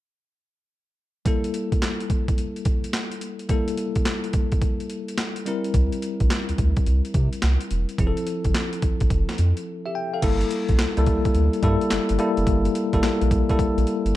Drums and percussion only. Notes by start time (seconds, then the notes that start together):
1.26 kick, closed hi-hat
1.44 closed hi-hat
1.54 closed hi-hat
1.72 kick, closed hi-hat
1.82 snare, clap, closed hi-hat
2.00 closed hi-hat
2.10 kick, closed hi-hat
2.28 kick, closed hi-hat
2.38 closed hi-hat
2.56 closed hi-hat
2.65 kick, closed hi-hat
2.84 closed hi-hat
2.93 snare, clap, closed hi-hat
3.11 closed hi-hat
3.21 closed hi-hat
3.39 closed hi-hat
3.49 kick, closed hi-hat
3.68 closed hi-hat
3.77 closed hi-hat
3.95 kick, closed hi-hat
4.05 snare, clap, closed hi-hat
4.24 closed hi-hat
4.33 kick, closed hi-hat
4.52 kick, closed hi-hat
4.62 kick, closed hi-hat
4.80 closed hi-hat
4.90 closed hi-hat
5.08 closed hi-hat
5.18 snare, clap, closed hi-hat
5.36 closed hi-hat
5.46 closed hi-hat
5.64 closed hi-hat
5.74 kick, closed hi-hat
5.92 closed hi-hat
6.02 closed hi-hat
6.20 kick, closed hi-hat
6.30 snare, clap, closed hi-hat
6.49 closed hi-hat
6.58 kick, closed hi-hat
6.76 kick, closed hi-hat
6.86 closed hi-hat
7.05 closed hi-hat
7.14 kick, closed hi-hat
7.33 closed hi-hat
7.42 snare, clap, closed hi-hat
7.61 closed hi-hat
7.71 closed hi-hat
7.89 closed hi-hat
7.98 kick, closed hi-hat
8.17 closed hi-hat
8.27 closed hi-hat
8.44 kick, closed hi-hat
8.54 snare, clap, closed hi-hat
8.73 closed hi-hat
8.82 kick, closed hi-hat
9.00 kick, closed hi-hat
9.10 kick, closed hi-hat
9.29 snare, closed hi-hat
9.38 closed hi-hat
9.57 closed hi-hat
10.22 kick, closed hi-hat, crash
10.41 closed hi-hat
10.51 closed hi-hat
10.69 kick, closed hi-hat
10.79 snare, clap, closed hi-hat
10.97 closed hi-hat
11.06 kick, closed hi-hat
11.25 kick, closed hi-hat
11.35 closed hi-hat
11.53 closed hi-hat
11.63 kick, closed hi-hat
11.81 closed hi-hat
11.90 snare, clap, closed hi-hat
12.09 closed hi-hat
12.19 closed hi-hat
12.37 closed hi-hat
12.47 kick, closed hi-hat
12.65 closed hi-hat
12.75 closed hi-hat
12.93 kick, closed hi-hat
13.03 snare, clap, closed hi-hat
13.21 closed hi-hat
13.31 kick, closed hi-hat
13.49 kick, closed hi-hat
13.59 kick, closed hi-hat
13.78 closed hi-hat
13.87 closed hi-hat
14.06 closed hi-hat